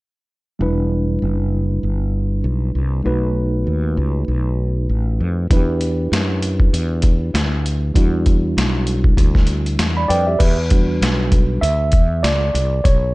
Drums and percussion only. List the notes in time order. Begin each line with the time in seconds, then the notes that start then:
5.51 kick, closed hi-hat
5.81 closed hi-hat
6.13 snare, closed hi-hat
6.42 closed hi-hat
6.60 kick
6.74 closed hi-hat
7.02 kick, closed hi-hat
7.35 snare, closed hi-hat
7.66 closed hi-hat
7.95 kick, closed hi-hat
8.26 kick, closed hi-hat
8.58 snare, closed hi-hat
8.87 closed hi-hat
9.04 kick
9.17 kick, closed hi-hat
9.35 kick, snare
9.47 closed hi-hat
9.66 closed hi-hat
9.79 snare, closed hi-hat
10.10 closed hi-hat
10.40 kick, closed hi-hat, crash
10.70 kick, closed hi-hat
11.02 snare, closed hi-hat
11.32 kick, closed hi-hat
11.63 closed hi-hat
11.92 kick, closed hi-hat
12.24 snare, closed hi-hat
12.55 closed hi-hat
12.85 kick, closed hi-hat